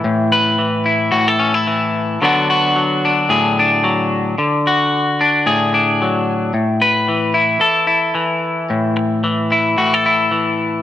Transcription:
Already playing: clean electric guitar E3 A4
0.04 clean electric guitar A2
0.32 clean electric guitar B4
0.59 clean electric guitar E3
0.86 clean electric guitar E4
1.12 clean electric guitar A2 F#4
1.28 clean electric guitar A4
1.39 clean electric guitar C#4
1.54 clean electric guitar E4
1.67 clean electric guitar E3
2.22 clean electric guitar D3 F#3 B3 D4 F#4
2.50 clean electric guitar F#4
2.76 clean electric guitar F#3
3.05 clean electric guitar D4
3.29 clean electric guitar A2 G#4
3.59 clean electric guitar D4
3.84 clean electric guitar F#3
4.38 clean electric guitar D3
4.67 clean electric guitar F#4
5.21 clean electric guitar D4
5.46 clean electric guitar A2 G#4
5.74 clean electric guitar D4
6.02 clean electric guitar F#3
6.54 clean electric guitar A2
6.82 clean electric guitar B4
7.09 clean electric guitar E3
7.34 clean electric guitar E4
7.60 clean electric guitar A4, muted clean electric guitar stroke
7.87 clean electric guitar E4
8.15 clean electric guitar E3
8.70 clean electric guitar A2
8.97 muted clean electric guitar stroke
9.24 clean electric guitar E3
9.52 clean electric guitar E4
9.78 clean electric guitar A2 F#4
9.94 clean electric guitar A4
10.06 clean electric guitar E4
10.31 clean electric guitar E3

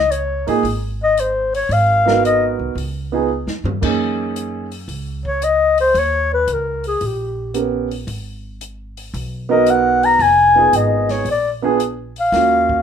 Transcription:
Already playing: upright bass C#2, clarinet D#5
0.11 clarinet C#5, closed hi-hat
0.47 upright bass G#2, grand piano A#3 D#4 F4 G#4, open hi-hat
0.63 upright bass G#1, open hi-hat
1.03 clarinet D#5
1.17 clarinet C5, closed hi-hat
1.55 clarinet C#5, open hi-hat
1.69 upright bass G#1, clarinet F5, open hi-hat
2.05 grand piano B3 D#4 F#4 A#4, snare
2.25 clarinet D#5, closed hi-hat
2.59 upright bass C2
2.75 upright bass C#2, open hi-hat
3.12 grand piano B3 D#4 F4 G#4
3.47 upright bass F2, snare
3.64 upright bass G2, mid tom
3.81 upright bass F#2, grand piano A#3 C#4 D#4 G#4, kick, crash
4.36 closed hi-hat
4.72 open hi-hat
4.88 upright bass C#2, open hi-hat
5.25 clarinet C#5, kick
5.42 clarinet D#5, closed hi-hat
5.78 clarinet C5, open hi-hat
5.94 upright bass D#2, open hi-hat
5.99 clarinet C#5
6.34 clarinet B4
6.47 upright bass C#2, closed hi-hat
6.53 clarinet A#4
6.84 clarinet G#4, open hi-hat
7.01 upright bass A#1, open hi-hat
7.06 clarinet G4
7.54 grand piano B3 C#4 G4 A#4, closed hi-hat
7.91 open hi-hat
8.07 upright bass G#1, open hi-hat
8.61 closed hi-hat
8.97 open hi-hat
9.14 upright bass B1, open hi-hat
9.49 grand piano B3 D#4 F#4 A#4, clarinet D#5
9.66 clarinet F#5, closed hi-hat
10.03 clarinet A#5, open hi-hat
10.19 upright bass F1, clarinet G#5, open hi-hat
10.55 grand piano B3 D#4 F4 G#4
10.73 upright bass G#1, clarinet D#5, closed hi-hat
11.09 clarinet C#5, snare, open hi-hat
11.25 upright bass A#1, open hi-hat
11.31 clarinet D5
11.62 grand piano B3 D4 F4 G#4
11.80 closed hi-hat
12.16 open hi-hat
12.20 clarinet F5
12.32 upright bass D#2, grand piano A#3 C#4 F4 F#4, snare, open hi-hat
12.69 kick

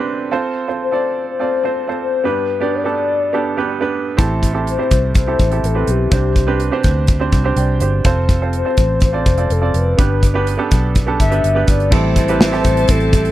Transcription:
Already playing: grand piano C3 C4 D4 G4 A4 B4 C5
0.31 grand piano C4 F4 A4 C5
0.68 grand piano C4 F4 A4 C5
0.82 soft synth lead C5
0.91 grand piano C4 F4 A4 D5
1.30 soft synth lead C5
1.39 grand piano C4 F4 A4 D5
1.63 grand piano C4 F4 A4 C5
1.88 grand piano C4 F4 A4 C5
2.02 soft synth lead C5
2.24 grand piano G2 B3 D4 G4 B4, soft synth lead B4
2.60 grand piano B3 D4 G4 D5
2.75 soft synth lead D5
2.84 grand piano B3 D4 G4 A4
3.33 grand piano B3 D4 G4 A4
3.57 grand piano B3 D4 G4 B4
3.81 grand piano B3 D4 G4 B4
4.17 fingered electric bass A1, grand piano A2 C4 E4 G4 A4, kick, closed hi-hat
4.43 kick, closed hi-hat
4.53 grand piano C4 E4 G4 A4
4.67 soft synth lead C5, closed hi-hat
4.78 grand piano C4 E4 G4 C5
4.91 fingered electric bass C2, kick, closed hi-hat
5.15 soft synth lead C5, kick, closed hi-hat
5.27 grand piano C4 E4 G4 A4
5.39 fingered electric bass A1, kick, closed hi-hat
5.51 grand piano C4 E4 G4 A4, closed hi-hat
5.64 fingered electric bass A1, soft synth lead A4, closed hi-hat
5.75 grand piano C4 E4 G4 B4
5.87 fingered electric bass B1, soft synth lead G4, closed hi-hat
6.11 fingered electric bass C2, grand piano C3 C4 D4 G4 C5, kick, closed hi-hat
6.36 kick, closed hi-hat
6.47 grand piano C4 D4 G4 B4
6.60 closed hi-hat
6.71 grand piano C4 D4 G4 C5
6.83 fingered electric bass D2, kick, closed hi-hat
7.07 kick, closed hi-hat
7.20 grand piano C4 D4 G4 C5
7.32 fingered electric bass C2, kick, closed hi-hat
7.44 grand piano C4 D4 G4 C5
7.56 fingered electric bass C2, grand piano D5 G5, closed hi-hat
7.80 fingered electric bass G1, grand piano G4 C5, closed hi-hat
8.04 fingered electric bass F1, grand piano C4 F4 A4 C5, kick, closed hi-hat
8.29 kick, closed hi-hat
8.42 grand piano C4 F4 A4 C5
8.53 soft synth lead C5, closed hi-hat
8.65 grand piano C4 F4 A4 C5
8.77 fingered electric bass A1, kick, closed hi-hat
9.00 soft synth lead C5, kick, closed hi-hat
9.13 grand piano C4 F4 A4 D5
9.26 fingered electric bass F1, kick, closed hi-hat
9.38 grand piano C4 F4 A4 D5, closed hi-hat
9.50 fingered electric bass F1, soft synth lead A4, closed hi-hat
9.61 grand piano C4 F4 A4 D5
9.74 fingered electric bass F1, soft synth lead B4, closed hi-hat
9.97 fingered electric bass G1, grand piano G2 B3 D4 G4 B4, kick, closed hi-hat
10.23 kick, closed hi-hat
10.34 grand piano B3 D4 G4 B4
10.47 closed hi-hat
10.58 grand piano B3 D4 G4 A4
10.71 fingered electric bass B1, kick, closed hi-hat
10.95 kick, closed hi-hat
11.07 grand piano B3 D4 G4 A4
11.20 fingered electric bass G1, soft synth lead E5, kick, closed hi-hat
11.30 grand piano B3 D4 G4 B4, closed hi-hat
11.44 fingered electric bass G1, closed hi-hat
11.55 grand piano B3 D4 G4 B4
11.68 fingered electric bass G1, soft synth lead D5, kick, closed hi-hat
11.80 closed hi-hat
11.91 fingered electric bass A1, clean electric guitar A2 E3 G3 C4 E4 A4, grand piano A2 C4 E4 G4 A4, string section G4 C5 E5 A5, soft synth lead C5, kick, crash
12.16 clean electric guitar G3 C4 E4 A4, kick, closed hi-hat
12.28 grand piano C4 E4 G4 B4, closed hi-hat
12.40 clean electric guitar A2 E3 G3 C4 E4 A4, snare
12.52 grand piano C4 E4 G4 A4, snare, closed hi-hat
12.63 fingered electric bass A1, clean electric guitar G3 C4 E4 A4, kick, closed hi-hat
12.77 closed hi-hat
12.88 fingered electric bass A1, clean electric guitar G3 C4 E4 A4, soft synth lead A4, kick, closed hi-hat
13.00 closed hi-hat
13.13 clean electric guitar G3 C4 E4 A4, kick, closed hi-hat
13.25 soft synth lead A4, closed hi-hat

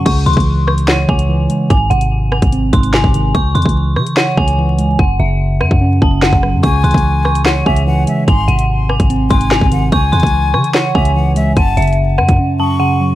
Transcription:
0.06 808-style bass C#2, tine electric piano C#3, synth bell C#6, kick, closed hi-hat, crash
0.26 808-style bass C#2, tine electric piano E3, synth bell C6, closed hi-hat
0.33 808-style bass C#2, kick, closed hi-hat
0.40 closed hi-hat
0.67 synth bell C#6, cross-stick
0.78 closed hi-hat
0.88 tine electric piano C#5, synth bell F#5, snare, clap
1.09 808-style bass C#2, tine electric piano C#3, synth bell G#5, kick
1.19 closed hi-hat
1.29 tine electric piano E3
1.50 tine electric piano G#3, closed hi-hat
1.70 808-style bass G#1, tine electric piano G#2, synth bell G#5, kick, closed hi-hat
1.90 808-style bass G#1, tine electric piano C3, synth bell F#5, closed hi-hat
2.01 closed hi-hat
2.32 synth bell G#5, cross-stick
2.42 808-style bass G#1, kick, closed hi-hat
2.52 tine electric piano C4, closed hi-hat
2.73 808-style bass G#1, tine electric piano G#2, synth bell C6, kick, closed hi-hat
2.83 closed hi-hat
2.94 tine electric piano C3, synth bell G#5, snare, clap
3.04 808-style bass G#1, kick
3.14 tine electric piano D#3, closed hi-hat
3.35 808-style bass C#2, tine electric piano C#3, synth bell C#6, kick, closed hi-hat
3.55 808-style bass E2, tine electric piano E3, synth bell C6, closed hi-hat
3.62 808-style bass C#2, kick, closed hi-hat
3.69 closed hi-hat
3.96 808-style bass C#3, synth bell C#6, cross-stick
4.07 closed hi-hat
4.17 tine electric piano C#5, synth bell F#5, snare, clap
4.37 808-style bass C#2, tine electric piano C#3, synth bell G#5, kick
4.48 closed hi-hat
4.58 tine electric piano E3
4.78 tine electric piano G#3, closed hi-hat
4.99 808-style bass F#1, tine electric piano F#2, synth bell F#5, kick
5.20 808-style bass F#1, tine electric piano C#3, synth bell E5
5.61 808-style bass F#2, synth bell F#5, cross-stick
5.71 808-style bass F#2, kick
5.81 tine electric piano C#4
6.02 808-style bass F#1, tine electric piano F#2, synth bell A5, kick
6.22 808-style bass G#1, tine electric piano C#3, synth bell F#5, snare, clap
6.33 808-style bass F#1, kick
6.43 tine electric piano F#3, cross-stick
6.53 808-style bass F#2
6.63 808-style bass C#2, tine electric piano C#3, flute G#5, synth bell C#6, kick, closed hi-hat
6.84 808-style bass C#2, tine electric piano E3, synth bell C6, closed hi-hat
6.91 808-style bass C#2, kick, closed hi-hat
6.98 closed hi-hat
7.25 synth bell C#6, cross-stick
7.35 closed hi-hat
7.45 tine electric piano C#5, flute F#5, synth bell F#5, snare, clap
7.66 808-style bass C#2, tine electric piano C#3, flute E5, synth bell G#5, kick
7.76 closed hi-hat
7.87 tine electric piano E3, flute F#5
8.07 tine electric piano G#3, flute E5, closed hi-hat
8.27 808-style bass G#1, tine electric piano G#2, synth bell G#5, flute C6, kick, closed hi-hat
8.48 808-style bass G#1, tine electric piano C3, synth bell F#5, closed hi-hat
8.59 closed hi-hat
8.89 synth bell G#5, cross-stick
9.00 808-style bass G#1, kick, closed hi-hat
9.10 tine electric piano C4, closed hi-hat
9.30 808-style bass G#1, tine electric piano G#2, flute G#5, synth bell C6, kick, closed hi-hat
9.41 closed hi-hat
9.51 tine electric piano C3, synth bell G#5, snare, clap
9.61 808-style bass G#1, kick
9.72 tine electric piano D#3, flute F#5, closed hi-hat
9.92 808-style bass C#2, tine electric piano C#3, flute G#5, synth bell C#6, kick, closed hi-hat
10.12 808-style bass E2, tine electric piano E3, synth bell C6, closed hi-hat
10.20 808-style bass C#2, kick, closed hi-hat
10.26 closed hi-hat
10.54 808-style bass C#3, synth bell C#6, cross-stick
10.64 closed hi-hat
10.74 tine electric piano C#5, flute F#5, synth bell F#5, snare, clap
10.95 808-style bass C#2, tine electric piano C#3, flute E5, synth bell G#5, kick
11.05 closed hi-hat
11.15 tine electric piano E3, flute F#5
11.36 tine electric piano G#3, flute E5, closed hi-hat
11.57 808-style bass F#1, tine electric piano F#2, synth bell F#5, flute A5, kick, closed hi-hat
11.77 808-style bass F#1, tine electric piano C#3, synth bell E5, closed hi-hat
11.82 closed hi-hat
11.87 closed hi-hat
11.93 closed hi-hat
12.18 808-style bass F#2, synth bell F#5, cross-stick
12.29 808-style bass F#2, kick, closed hi-hat
12.39 tine electric piano C#4
12.59 tine electric piano F#2, synth bell A5, flute C#6
12.80 tine electric piano C#3, synth bell F#5
13.01 tine electric piano F#3

